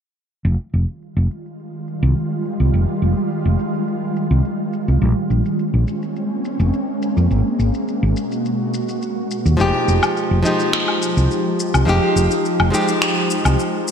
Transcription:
0.45 0.55 F1 medium
0.45 4.98 D#3 medium
0.45 4.98 G3 medium
0.45 4.98 G#3 medium
0.45 4.98 F4 medium
0.73 0.84 F1 medium
0.73 shaker medium
0.88 shaker soft
1.02 shaker soft
1.17 1.26 F1 medium
1.31 shaker medium
1.46 shaker soft
1.60 shaker soft
1.88 shaker medium
2.03 2.12 C2 medium
2.03 shaker soft
2.16 shaker soft
2.45 shaker medium
2.60 2.69 C2 medium
2.60 shaker soft
2.74 2.84 F1 medium
2.74 shaker soft
3.02 3.12 F1 medium
3.02 shaker medium
3.17 shaker soft
3.30 shaker soft
3.45 3.55 F1 medium
3.59 shaker medium
3.74 shaker soft
3.88 shaker soft
4.16 shaker medium
4.31 4.40 C2 medium
4.31 shaker soft
4.45 shaker soft
4.73 shaker medium
4.88 4.98 C2 medium
4.88 shaker soft
5.01 5.12 A#1 medium
5.01 9.55 G#3 medium
5.01 9.55 A#3 medium
5.01 7.28 C4 medium
5.01 7.28 C#4 medium
5.01 shaker soft
5.30 5.41 A#1 medium
5.30 shaker medium
5.45 shaker soft
5.59 shaker soft
5.74 5.83 A#1 medium
5.88 shaker medium
6.02 shaker soft
6.16 shaker soft
6.45 shaker medium
6.60 6.69 F1 medium
6.60 shaker soft
6.73 shaker soft
7.02 shaker medium
7.17 7.26 F2 medium
7.17 shaker soft
7.30 7.41 G#1 medium
7.30 9.57 B2 medium
7.30 9.57 F#4 medium
7.30 shaker soft
7.59 7.69 G#1 medium
7.59 shaker medium
7.74 shaker soft
7.88 shaker soft
8.03 8.12 G#1 medium
8.17 shaker medium
8.32 shaker soft
8.45 shaker soft
8.74 shaker medium
8.89 shaker soft
9.02 shaker soft
9.31 shaker medium
9.46 9.55 D#2 medium
9.46 shaker soft
9.57 9.69 F1 medium
9.57 10.41 F3 medium
9.57 13.91 F3 medium
9.57 10.41 G#3 medium
9.57 13.91 G#3 medium
9.57 13.91 D#4 medium
9.57 10.42 D#4 medium
9.57 13.91 G4 medium
9.57 shaker soft
9.61 10.43 G4 medium
9.88 9.98 F1 medium
9.88 shaker medium
10.03 low woodblock medium
10.03 shaker soft
10.17 shaker soft
10.31 10.41 F1 medium
10.43 11.83 F3 medium
10.43 11.84 G#3 medium
10.43 11.85 D#4 medium
10.43 11.85 G4 medium
10.43 shaker medium
10.60 shaker soft
10.73 finger snap medium
10.73 shaker soft
10.88 low woodblock medium
11.02 shaker medium
11.17 11.26 C2 medium
11.17 shaker soft
11.31 shaker soft
11.60 shaker medium
11.74 11.84 C2 medium
11.74 low woodblock medium
11.74 shaker soft
11.85 11.98 F1 medium
11.85 12.69 F3 medium
11.85 12.70 G#3 medium
11.85 12.70 D#4 medium
11.85 12.71 G4 medium
11.85 shaker soft
12.16 12.26 F1 medium
12.16 shaker medium
12.31 shaker soft
12.45 shaker soft
12.60 12.69 F1 medium
12.60 low woodblock medium
12.70 13.91 F3 medium
12.70 13.91 G#3 medium
12.70 13.91 D#4 medium
12.70 shaker medium
12.75 13.91 G4 medium
12.88 shaker soft
13.02 finger snap medium
13.02 shaker soft
13.30 shaker medium
13.45 13.55 C2 medium
13.45 low woodblock medium
13.45 shaker soft
13.59 shaker soft
13.88 shaker medium

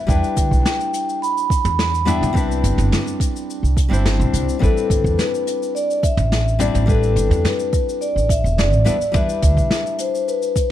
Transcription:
0.00 0.11 E5 medium
0.07 0.21 E2 medium
0.07 2.02 G3 medium
0.07 0.10 B3 medium
0.07 2.03 D4 medium
0.07 2.04 E4 medium
0.07 0.64 G5 loud
0.07 kick loud
0.07 cabasa medium
0.11 2.04 B4 medium
0.24 cabasa soft
0.37 0.49 D2 medium
0.37 kick loud
0.37 closed hi-hat loud
0.37 cabasa medium
0.51 0.63 B1 loud
0.51 kick medium
0.51 cabasa medium
0.65 1.18 G5 medium
0.65 snare medium
0.65 cabasa medium
0.81 cabasa soft
0.94 closed hi-hat medium
0.94 cabasa medium
1.09 cabasa soft
1.22 2.10 B5 loud
1.22 cabasa medium
1.38 cabasa soft
1.50 kick loud
1.50 closed hi-hat medium
1.50 cabasa medium
1.65 2.18 E2 medium
1.65 mid tom medium
1.65 cabasa soft
1.79 snare medium
1.79 cabasa medium
1.95 cabasa soft
2.05 2.31 G3 medium
2.05 2.31 B3 medium
2.05 2.32 D4 medium
2.05 2.32 E4 medium
2.05 2.32 E5 loud
2.05 2.34 G5 medium
2.05 closed hi-hat medium
2.05 mid tom medium
2.05 cabasa medium
2.21 2.60 C2 medium
2.21 mid tom medium
2.21 cabasa medium
2.33 3.87 G3 medium
2.33 3.87 C4 medium
2.33 3.88 D4 medium
2.33 3.89 E4 medium
2.33 kick loud
2.37 3.89 B4 medium
2.37 cabasa medium
2.52 cabasa soft
2.64 2.76 G1 medium
2.64 closed hi-hat medium
2.64 cabasa medium
2.78 2.89 G1 medium
2.78 mid tom medium
2.78 cabasa soft
2.92 snare medium
2.92 mid tom medium
2.92 cabasa medium
3.07 cabasa soft
3.20 kick loud
3.20 closed hi-hat medium
3.20 cabasa medium
3.36 cabasa soft
3.50 cabasa medium
3.63 3.87 C2 medium
3.63 cabasa soft
3.77 kick medium
3.77 closed hi-hat loud
3.77 cabasa medium
3.89 4.21 G1 medium
3.89 4.57 G3 medium
3.89 4.57 C4 medium
3.89 4.58 D4 medium
3.89 4.58 E4 medium
3.93 4.59 C5 loud
3.93 cabasa soft
4.06 snare loud
4.06 mid tom medium
4.06 cabasa medium
4.20 4.31 C2 loud
4.20 cabasa soft
4.33 4.45 C2 medium
4.33 closed hi-hat medium
4.33 cabasa medium
4.49 cabasa soft
4.59 4.74 A1 medium
4.59 6.55 G3 medium
4.59 6.56 C4 medium
4.59 6.56 D4 medium
4.59 6.57 E4 medium
4.59 5.14 A4 medium
4.59 kick loud
4.63 6.57 B4 loud
4.63 cabasa medium
4.77 cabasa soft
4.90 5.02 G1 medium
4.90 kick loud
4.90 closed hi-hat medium
4.90 cabasa medium
5.04 5.16 E2 medium
5.04 kick medium
5.04 cabasa soft
5.18 5.71 B4 medium
5.18 snare medium
5.18 cabasa medium
5.34 cabasa soft
5.47 closed hi-hat medium
5.47 cabasa medium
5.63 cabasa soft
5.75 6.01 D5 loud
5.75 cabasa medium
5.91 cabasa soft
6.03 6.56 E5 loud
6.03 kick medium
6.03 closed hi-hat medium
6.03 cabasa medium
6.17 6.70 A1 medium
6.17 mid tom medium
6.17 cabasa soft
6.32 snare medium
6.32 cabasa medium
6.48 cabasa soft
6.59 6.84 G3 medium
6.59 6.84 C4 medium
6.59 6.85 D4 medium
6.59 6.85 E4 medium
6.59 6.85 D5 loud
6.59 closed hi-hat medium
6.59 mid tom medium
6.59 cabasa medium
6.74 7.13 A1 medium
6.74 mid tom medium
6.74 cabasa soft
6.86 8.82 G3 medium
6.86 8.82 C4 medium
6.86 8.83 D4 medium
6.86 8.83 E4 medium
6.86 7.46 A4 loud
6.86 kick loud
6.86 cabasa medium
6.90 8.84 B4 loud
7.03 cabasa soft
7.16 7.28 G1 medium
7.16 closed hi-hat medium
7.16 cabasa medium
7.31 7.42 E2 medium
7.31 mid tom medium
7.31 cabasa soft
7.44 8.03 B4 medium
7.44 snare medium
7.44 mid tom medium
7.44 cabasa medium
7.60 cabasa soft
7.73 kick loud
7.73 closed hi-hat medium
7.73 cabasa medium
7.89 cabasa soft
8.01 8.30 D5 loud
8.01 cabasa medium
8.16 8.39 A1 medium
8.16 cabasa soft
8.29 8.56 E5 loud
8.29 kick loud
8.29 closed hi-hat loud
8.29 cabasa medium
8.44 8.72 E1 medium
8.44 cabasa soft
8.58 9.10 D5 loud
8.58 snare loud
8.58 mid tom medium
8.58 cabasa soft
8.72 8.84 A1 medium
8.72 cabasa soft
8.85 8.98 E2 medium
8.85 8.95 G3 medium
8.85 8.95 B3 medium
8.85 8.96 D4 medium
8.85 8.96 E4 medium
8.85 8.96 B4 medium
8.85 closed hi-hat medium
8.85 cabasa medium
9.01 cabasa soft
9.12 9.26 E2 loud
9.12 10.71 G3 medium
9.12 9.16 B3 medium
9.12 10.71 D4 medium
9.12 10.71 E4 medium
9.12 9.95 E5 loud
9.12 kick loud
9.12 cabasa soft
9.16 10.71 B4 medium
9.29 cabasa soft
9.43 9.55 D2 loud
9.43 kick medium
9.43 closed hi-hat loud
9.43 cabasa medium
9.57 9.69 B1 medium
9.57 kick medium
9.57 cabasa soft
9.71 snare medium
9.71 cabasa medium
9.86 cabasa soft
9.98 10.26 C5 medium
9.98 closed hi-hat medium
9.98 cabasa medium
10.15 cabasa soft
10.28 10.71 B4 loud
10.28 cabasa medium
10.42 cabasa soft
10.56 kick medium
10.56 closed hi-hat medium
10.56 cabasa medium

